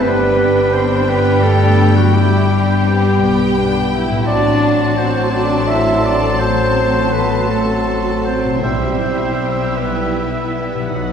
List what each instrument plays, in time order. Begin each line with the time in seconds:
Already playing: harp G2 B3 D4
0.00 double bass section G1, bassoon G3, french horn section B3 G4, viola section D4, violin section D4 G5, harp G4, clarinet B4, oboe B4, flute B5
0.04 cello section B3
0.73 cello section C4, clarinet C5, oboe C5
1.08 cello section B3, french horn section B3 G4, violin section G4, oboe B4, clarinet B4
1.43 cello section A3, oboe A4, clarinet A4
1.95 cello section F#3, oboe F#4, clarinet F#4
2.14 cello section G3, french horn section B3 G4, viola section E4, clarinet G4, oboe G4, violin section G4
2.51 viola section D4
2.87 viola section C4
3.21 double bass section B1, viola section B3, violin section G5
3.57 viola section D4
3.93 viola section E4
4.09 harp A2
4.14 harp A3
4.18 harp C4
4.23 double bass section A1, bassoon F#3, french horn section C4 F#4, harp F#4, oboe D5
4.27 cello section D4, viola section F#4, violin section F#4 A5, clarinet D5, flute C6
4.97 cello section C4, oboe C5, clarinet C5
5.32 cello section D4, violin section A4, clarinet D5, oboe D5
5.67 cello section E4, clarinet E5, oboe E5
6.02 cello section D4, clarinet D5, oboe D5
6.39 cello section C4, french horn section C4 F#4, viola section F#4, clarinet C5, oboe C5
7.12 cello section B3, clarinet B4, oboe B4
7.49 cello section A3, french horn section C4 F#4, clarinet A4, violin section A4, oboe A4
8.24 cello section C4, clarinet C5, oboe C5
8.44 harp B2
8.49 harp G3
8.53 harp E4
8.58 french horn section G3 E4, harp G4, clarinet C5
8.62 double bass section B1, timpani B2, bassoon G3, cello section C4, viola section E4, violin section G4 E5, oboe C5, flute E6
9.77 french horn section G3 E4, cello section B3, oboe B4, clarinet B4
10.75 harp B2
10.79 harp F#3
10.84 harp D#4
10.88 timpani B2, violin section F#4 F#5, harp B4
10.92 double bass section B1, french horn section F#3 D#4, bassoon F#3, viola section D#4